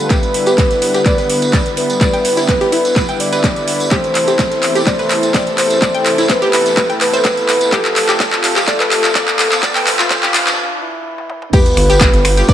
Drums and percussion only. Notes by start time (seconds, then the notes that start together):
0.10 kick, clap, closed hi-hat, ride, tambourine
0.23 closed hi-hat, ride, tambourine
0.34 open hi-hat, ride
0.46 snare, closed hi-hat, tambourine
0.58 kick, snare, clap, closed hi-hat, ride, tambourine
0.71 snare, closed hi-hat, tambourine
0.82 snare, open hi-hat, ride
0.94 snare, closed hi-hat, tambourine
1.06 kick, clap, closed hi-hat, ride, tambourine
1.18 snare, closed hi-hat, tambourine
1.30 open hi-hat, ride
1.42 closed hi-hat, ride, tambourine
1.53 kick, snare, clap, closed hi-hat, ride, tambourine
1.66 closed hi-hat, tambourine
1.77 open hi-hat, ride
1.90 closed hi-hat, tambourine
2.01 kick, clap, closed hi-hat, ride, tambourine
2.14 closed hi-hat, tambourine
2.25 snare, open hi-hat, ride
2.37 snare, closed hi-hat, tambourine
2.48 kick, snare, clap, closed hi-hat, ride, tambourine
2.61 snare, closed hi-hat, tambourine
2.72 open hi-hat, ride
2.85 snare, closed hi-hat, tambourine
2.96 kick, clap, closed hi-hat, ride, tambourine
3.09 closed hi-hat, tambourine
3.20 open hi-hat, ride
3.32 snare, closed hi-hat, tambourine
3.44 kick, snare, clap, closed hi-hat, ride, tambourine
3.56 closed hi-hat, tambourine
3.67 snare, open hi-hat, ride
3.80 closed hi-hat, tambourine
3.91 kick, clap, closed hi-hat, ride, tambourine
4.04 closed hi-hat, ride, tambourine
4.15 clap, open hi-hat, ride
4.28 snare, closed hi-hat, tambourine
4.39 kick, snare, clap, closed hi-hat, ride, tambourine
4.51 snare, closed hi-hat, tambourine
4.62 snare, clap, open hi-hat, ride
4.75 snare, closed hi-hat, tambourine
4.87 kick, clap, closed hi-hat, ride, tambourine
4.99 snare, closed hi-hat, tambourine
5.10 clap, open hi-hat, ride
5.23 closed hi-hat, ride, tambourine
5.34 kick, snare, clap, closed hi-hat, ride, tambourine
5.47 closed hi-hat, tambourine
5.58 clap, open hi-hat, ride
5.70 closed hi-hat, tambourine
5.82 kick, clap, closed hi-hat, ride, tambourine
5.94 closed hi-hat, tambourine
6.06 snare, clap, open hi-hat, ride
6.18 snare, closed hi-hat, tambourine
6.29 kick, snare, clap, closed hi-hat, ride, tambourine
6.42 snare, closed hi-hat, tambourine
6.53 clap, open hi-hat, ride
6.66 snare, closed hi-hat, tambourine
6.77 kick, clap, closed hi-hat, ride, tambourine
6.90 closed hi-hat, tambourine
7.01 clap, open hi-hat, ride
7.13 snare, closed hi-hat, tambourine
7.24 kick, snare, clap, closed hi-hat, ride, tambourine
7.37 closed hi-hat, tambourine
7.48 snare, clap, open hi-hat, ride
7.61 closed hi-hat, tambourine
7.72 kick, clap, closed hi-hat, ride, tambourine
7.85 clap, closed hi-hat, ride, tambourine
7.96 clap, open hi-hat, ride
8.08 snare, clap, closed hi-hat, tambourine
8.20 kick, snare, clap, closed hi-hat, ride, tambourine
8.32 snare, clap, closed hi-hat, tambourine
8.44 snare, clap, open hi-hat, ride
8.56 snare, clap, closed hi-hat, tambourine
8.68 kick, clap, closed hi-hat, ride, tambourine
8.80 snare, clap, closed hi-hat, tambourine
8.91 clap, open hi-hat, ride
9.03 clap, closed hi-hat, ride, tambourine
9.15 kick, snare, clap, closed hi-hat, ride, tambourine
9.28 clap, closed hi-hat, tambourine
9.39 clap, open hi-hat, ride
9.52 clap, closed hi-hat, tambourine
9.63 kick, clap, closed hi-hat, ride, tambourine
9.75 clap, open hi-hat, tambourine
9.86 snare, clap, open hi-hat, ride
9.99 snare, clap, closed hi-hat, tambourine
10.10 kick, snare, clap, closed hi-hat, ride, tambourine
10.23 snare, clap, closed hi-hat, tambourine
10.34 clap, open hi-hat, ride
10.47 snare, clap, closed hi-hat, tambourine
11.18 high tom
11.30 mid tom
11.42 mid tom
11.53 kick, closed hi-hat, crash, ride, tambourine
11.66 closed hi-hat, ride, tambourine
11.77 finger snap, open hi-hat, ride
11.90 snare, closed hi-hat, tambourine
12.01 kick, snare, clap, closed hi-hat, ride
12.14 snare, closed hi-hat, tambourine
12.25 finger snap, snare, open hi-hat, ride
12.37 snare, closed hi-hat, tambourine
12.48 kick, closed hi-hat, ride, tambourine